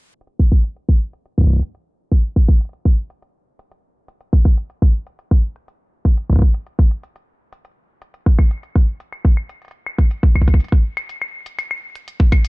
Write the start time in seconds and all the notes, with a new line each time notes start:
0.21 closed hi-hat
0.27 closed hi-hat
0.39 kick
0.52 kick, closed hi-hat
0.64 closed hi-hat
0.77 closed hi-hat
0.89 kick
1.13 closed hi-hat
1.26 closed hi-hat
1.38 kick
1.41 kick
1.44 kick
1.47 kick
1.50 kick
1.53 kick
1.56 kick
1.59 kick, closed hi-hat
1.75 closed hi-hat
2.12 kick, closed hi-hat
2.36 kick
2.48 kick, closed hi-hat
2.53 closed hi-hat
2.57 closed hi-hat
2.61 closed hi-hat
2.65 closed hi-hat
2.69 closed hi-hat
2.73 closed hi-hat
2.85 kick
3.10 closed hi-hat
3.22 closed hi-hat
3.59 closed hi-hat
3.72 closed hi-hat
4.08 closed hi-hat
4.21 closed hi-hat
4.33 kick
4.45 kick, closed hi-hat
4.58 closed hi-hat
4.70 closed hi-hat
4.82 kick
5.07 closed hi-hat
5.19 closed hi-hat
5.31 kick
5.56 closed hi-hat
5.68 closed hi-hat
6.05 kick, closed hi-hat
6.17 closed hi-hat
6.30 kick
6.33 kick
6.36 kick
6.39 kick
6.42 kick, closed hi-hat
6.54 closed hi-hat
6.67 closed hi-hat
6.79 kick
6.91 closed hi-hat
7.03 closed hi-hat
7.16 closed hi-hat
7.53 closed hi-hat
7.65 closed hi-hat
8.02 closed hi-hat
8.14 closed hi-hat
8.26 kick
8.39 kick, closed hi-hat, claves
8.51 closed hi-hat
8.63 closed hi-hat
8.76 kick
9.00 closed hi-hat
9.13 closed hi-hat, claves
9.25 kick
9.37 claves
9.49 closed hi-hat
9.62 closed hi-hat
9.65 closed hi-hat
9.68 closed hi-hat
9.71 closed hi-hat
9.86 claves
9.98 kick, closed hi-hat
10.11 closed hi-hat
10.23 kick
10.35 kick, closed hi-hat, claves
10.42 kick
10.48 kick, closed hi-hat
10.54 kick
10.60 closed hi-hat
10.64 closed hi-hat
10.68 kick, closed hi-hat
10.97 closed hi-hat, claves
11.09 closed hi-hat
11.22 claves
11.46 closed hi-hat
11.59 closed hi-hat, claves
11.71 claves
11.95 closed hi-hat
12.08 closed hi-hat
12.20 kick
12.32 kick, closed hi-hat, claves
12.45 closed hi-hat